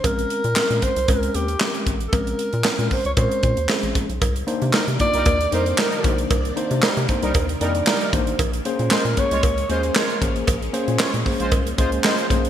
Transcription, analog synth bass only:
X:1
M:4/4
L:1/16
Q:1/4=115
K:Cphr
V:1 name="Analog synth bass" clef=bass
B,,,2 z B,, B,, B,, z C,, D,,2 E,,2 z2 =A,,,2 | B,,,2 z B,, B,, B,, z D,, B,, z B,, E,, z =A,,, B,,, =B,,, | C,,2 z C, C, C, z C,, E,,2 F,,2 z2 =B,,,2 | C,,2 z C, C, C, z C,, E,,2 F,,2 z2 =A,,,2 |
B,,,2 z B,, B,, B,, z C,, D,,2 E,,2 z2 =A,,,2 | B,,,2 z B,, B,, B,, z B,,, C,,2 D,,2 z2 =B,,,2 |]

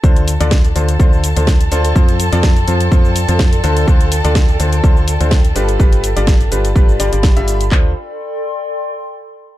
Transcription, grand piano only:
X:1
M:4/4
L:1/16
Q:"Swing 16ths" 1/4=125
K:Ddor
V:1 name="Grand piano"
[D,DFAc]2 z [D,DFAd] z2 [D,DFAc] z [D,DFAc]2 z [D,DFAc] z2 [DFAc]2 | [F,CFAc]2 z [F,CFAd] z2 [F,CFAc] z [F,CFAc]2 z [F,CFAc] z2 [D,DFAc]2 | [D,DFAc]2 z [D,DFAd] z2 [D,DFAc] z [D,DFAc]2 z [D,DFAc] z2 [G,DFGB]2 | [G,DFGB]2 z [G,DFGd] z2 [G,DFGB] z [G,DFGB]2 [G,DFGd] [G,DFGd]2 [G,DFGe]2 z |
[DFAc]2 z12 z2 |]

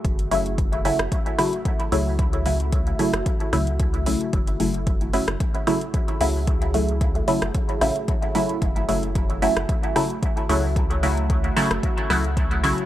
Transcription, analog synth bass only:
X:1
M:4/4
L:1/16
Q:"Swing 16ths" 1/4=112
K:F#m
V:1 name="Analog synth bass" clef=bass
F,,,6 z F,,, z6 C,,2- | C,,4- C,, z2 F,,, z2 C,,4 B,,, z | F,,,6 z F,,, z6 C,,2- | C,,4- C,, z2 F,,, z2 A,,, z4 z |
F,,,6 z F,,, z6 C,,2- | C,,4- C,, z2 F,,, z2 C,,4 B,,, z |]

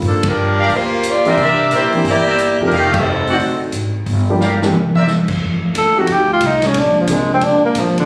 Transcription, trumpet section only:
X:1
M:4/4
L:1/8
Q:"Swing" 1/4=178
K:Fmix
V:1 name="Trumpet section"
z3 [GBdf] z3 [Bcd=e]- | [Bcd=e]2 [Bcde] z2 [Bcde] z2 | [GAef]3 [_Gcd_g] z4 | z2 [GBdf] z2 [Bcd=e] z2 |
z8 | z8 |]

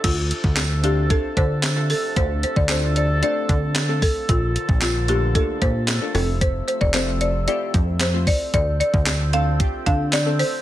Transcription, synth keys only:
X:1
M:4/4
L:1/16
Q:1/4=113
K:Dm
V:1 name="Synth keys"
z6 [A,CDFA] z [A,CDFA]3 z2 [A,CDFA]2 z | [A,CDFA]3 z [A,CDFA]3 z [A,CDFA]3 z2 [A,CDFA]3 | z6 [A,B,DFA] z [A,B,DFA]3 z2 [A,B,DFA] [A,CEFA]2- | [A,CEFA]3 z [A,CEFA]3 z [A,CEFG]3 z2 [A,CEFc]3 |
z6 [A,CDFA] z [A,CDFG]3 z2 [A,CDFA]2 z |]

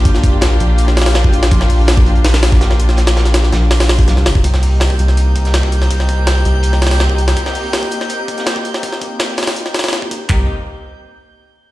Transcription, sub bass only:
X:1
M:4/4
L:1/8
Q:1/4=164
K:Cm
V:1 name="Sub bass" clef=bass
B,,,3 B,,,4- B,,, | B,,,3 B,,,4- B,,,- | B,,,3 B,,,3 C,, F,,, | C,,3 C,,4- C,,- |
C,,3 C,,4- C,, | z8 | z8 | C,, z6 z |]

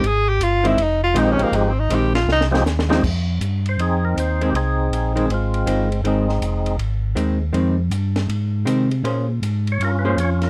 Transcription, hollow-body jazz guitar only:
X:1
M:4/4
L:1/8
Q:"Swing" 1/4=160
K:Fm
V:1 name="Hollow-body jazz guitar" clef=bass
z3 [E,A,C] z2 [E,A,C] z | z2 [E,A,C] z4 [E,A,C] | z6 z [E,A,C] | z3 [E,A,C] z2 [E,A,C] z |
[E,A,C] z4 z [E,A,C] z | [E,A,C] z4 z [E,A,C] z | [B,DAc] z4 [B,DAc] z2 |]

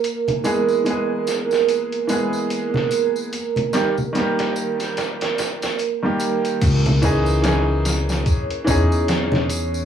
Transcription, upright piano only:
X:1
M:4/4
L:1/16
Q:"Swing 16ths" 1/4=73
K:C#dor
V:1 name="Upright piano"
z2 [E,G,B,G]2 [E,G,B,G]6 [E,G,B,G]6 | z2 [D,=G,A,=G] z [D,G,A,G]6- [D,G,A,G] z2 [D,G,A,G]3 | z2 [E,CDG]2 [E,CDG]6 [E,CDG]6 |]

